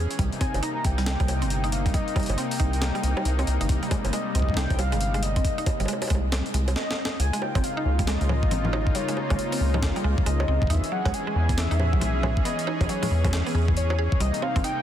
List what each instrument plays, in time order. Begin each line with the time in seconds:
Already playing: analog synth pad E3 C#4 G#4
0.11 closed hi-hat
0.19 acid bass C2, analog synth pad C3 A#3 D#4, synth arpeggio sound G3, kick, closed hi-hat
0.32 closed hi-hat
0.41 synth arpeggio sound C4, soft synth lead G#5, kick, closed hi-hat, high bongo
0.54 acid bass G1, closed hi-hat, high bongo
0.63 synth arpeggio sound D#4, soft synth lead A#5, closed hi-hat
0.84 acid bass C2, synth arpeggio sound G3, soft synth lead G5, kick, closed hi-hat
0.98 synth arpeggio sound G3, closed hi-hat
1.06 snare, closed hi-hat
1.20 acid bass C2, synth arpeggio sound G3, kick, closed hi-hat, high bongo
1.28 closed hi-hat, high bongo
1.42 acid bass G1, synth arpeggio sound C4, closed hi-hat
1.50 closed hi-hat
1.64 synth arpeggio sound D#4, closed hi-hat
1.72 soft synth lead F5, closed hi-hat
1.86 synth arpeggio sound G3, kick, closed hi-hat
1.94 synth arpeggio sound G3, soft synth lead D#5, kick, closed hi-hat
2.08 closed hi-hat
2.16 synth arpeggio sound G3, kick, closed hi-hat, high bongo
2.20 closed hi-hat
2.23 closed hi-hat
2.26 acid bass G1, closed hi-hat
2.29 closed hi-hat, high bongo
2.38 synth arpeggio sound C4, soft synth lead G5, closed hi-hat
2.51 open hi-hat
2.60 acid bass C2, synth arpeggio sound D#4, kick, closed hi-hat
2.73 closed hi-hat
2.81 synth arpeggio sound G3, snare, closed hi-hat
2.95 synth arpeggio sound G3, closed hi-hat
3.03 acid bass C2, closed hi-hat
3.17 synth arpeggio sound G3, high bongo
3.25 acid bass C2, closed hi-hat
3.39 synth arpeggio sound C4, closed hi-hat, high bongo
3.47 acid bass C2, closed hi-hat
3.61 acid bass G1, synth arpeggio sound D#4, closed hi-hat
3.69 acid bass C2, analog synth pad C3 G3, kick, closed hi-hat
3.83 synth arpeggio sound G3, closed hi-hat
3.91 synth arpeggio sound G#3, kick, closed hi-hat, high bongo
4.05 acid bass G1, closed hi-hat, high bongo
4.13 synth arpeggio sound G#3, soft synth lead D#5, closed hi-hat
4.35 acid bass C2, synth arpeggio sound C4, kick, closed hi-hat
4.40 kick
4.42 kick
4.49 kick
4.54 synth arpeggio sound D#4, soft synth lead G5, kick, snare, closed hi-hat
4.70 acid bass C2, kick, closed hi-hat, high bongo
4.79 synth arpeggio sound G3, soft synth lead F5, closed hi-hat, high bongo
4.92 acid bass G1, synth arpeggio sound G#3, closed hi-hat
5.01 closed hi-hat
5.14 synth arpeggio sound G#3, closed hi-hat
5.23 soft synth lead D#5, closed hi-hat
5.36 synth arpeggio sound C4, kick, closed hi-hat
5.45 kick, closed hi-hat
5.58 synth arpeggio sound D#4, closed hi-hat
5.66 kick, closed hi-hat, high bongo
5.80 acid bass G1, synth arpeggio sound G3, closed hi-hat, high bongo
5.85 synth arpeggio sound G#3, closed hi-hat, high bongo
5.93 high bongo
6.02 open hi-hat, high bongo
6.07 acid bass C2, synth arpeggio sound G#3, kick, closed hi-hat, high bongo
6.15 high bongo
6.32 synth arpeggio sound C4, snare, closed hi-hat
6.46 closed hi-hat
6.54 acid bass C2, synth arpeggio sound G#3, closed hi-hat
6.68 closed hi-hat, high bongo
6.76 soft synth lead D#5, snare
6.91 snare
7.05 snare
7.20 acid bass C#2, analog synth pad C#3 A#3 D#4 F4, soft synth lead G#5, closed hi-hat
7.33 synth arpeggio sound G#3, closed hi-hat
7.42 soft synth lead G5, high bongo
7.55 acid bass G#1, synth arpeggio sound C4, kick, closed hi-hat, high bongo
7.64 soft synth lead F5, closed hi-hat
7.77 synth arpeggio sound D#4
7.86 acid bass C#2
7.99 synth arpeggio sound G3, kick, closed hi-hat
8.07 synth arpeggio sound G#3, soft synth lead D#5, snare, closed hi-hat
8.21 acid bass C#2, closed hi-hat
8.29 synth arpeggio sound G#3, high bongo, low conga
8.43 acid bass G#1, kick
8.51 synth arpeggio sound C4, closed hi-hat, low conga
8.65 low conga
8.73 synth arpeggio sound D#4, high bongo
8.87 kick
8.95 synth arpeggio sound G3, soft synth lead C#5, closed hi-hat
9.08 synth arpeggio sound G#3, closed hi-hat
9.17 high bongo
9.30 acid bass G#1, synth arpeggio sound G#3, kick, closed hi-hat, high bongo
9.39 closed hi-hat
9.52 synth arpeggio sound C4, open hi-hat
9.61 acid bass C#2
9.74 synth arpeggio sound D#4, high bongo, low conga
9.83 kick, snare, closed hi-hat
9.96 synth arpeggio sound G3, closed hi-hat
10.04 acid bass C#2, synth arpeggio sound G#3
10.18 kick
10.26 acid bass C#2, synth arpeggio sound G#3, soft synth lead D#5, closed hi-hat
10.40 high bongo
10.48 acid bass C#2, synth arpeggio sound C4
10.62 acid bass G#1, kick
10.67 acid bass E2, analog synth pad E3 C#4 G#4, synth arpeggio sound D#4, soft synth lead E5, kick
10.70 kick, closed hi-hat
10.75 kick
10.77 kick
10.84 closed hi-hat
10.92 synth arpeggio sound F#3, soft synth lead F#5
11.05 acid bass B1, synth arpeggio sound G#3, kick, closed hi-hat, high bongo
11.14 soft synth lead G#5, closed hi-hat
11.27 synth arpeggio sound G#3
11.36 acid bass E2
11.49 synth arpeggio sound B3, kick, closed hi-hat
11.58 soft synth lead E5, snare, closed hi-hat
11.71 acid bass E2, synth arpeggio sound D#4, closed hi-hat
11.80 high bongo, low conga
11.93 acid bass B1, synth arpeggio sound F#3, kick
12.01 synth arpeggio sound G#3, closed hi-hat, low conga
12.23 synth arpeggio sound G#3, high bongo, low conga
12.37 kick
12.45 synth arpeggio sound B3, soft synth lead D#5, closed hi-hat
12.59 closed hi-hat
12.67 synth arpeggio sound D#4, high bongo
12.81 acid bass B1, kick, closed hi-hat, high bongo
12.89 synth arpeggio sound F#3, soft synth lead C#5, closed hi-hat
13.03 synth arpeggio sound G#3, open hi-hat, low conga
13.11 acid bass E2
13.24 synth arpeggio sound G#3, kick, closed hi-hat, high bongo, low conga
13.27 high bongo
13.29 high bongo
13.31 snare, closed hi-hat, high bongo
13.46 synth arpeggio sound B3, closed hi-hat
13.49 closed hi-hat
13.51 closed hi-hat
13.53 acid bass E2, synth arpeggio sound G#4, closed hi-hat
13.62 closed hi-hat
13.65 synth arpeggio sound G#2, kick, closed hi-hat
13.77 soft synth lead C#5, closed hi-hat
13.90 synth arpeggio sound G#4, high bongo
13.99 synth arpeggio sound G#4
14.12 kick
14.20 acid bass C2, analog synth pad C3 A#3 D#4, synth arpeggio sound G3, soft synth lead D#5, closed hi-hat
14.34 closed hi-hat
14.42 synth arpeggio sound C4, soft synth lead F5, high bongo
14.56 acid bass G1, synth arpeggio sound C4, kick, closed hi-hat
14.64 synth arpeggio sound D#4, soft synth lead G5, closed hi-hat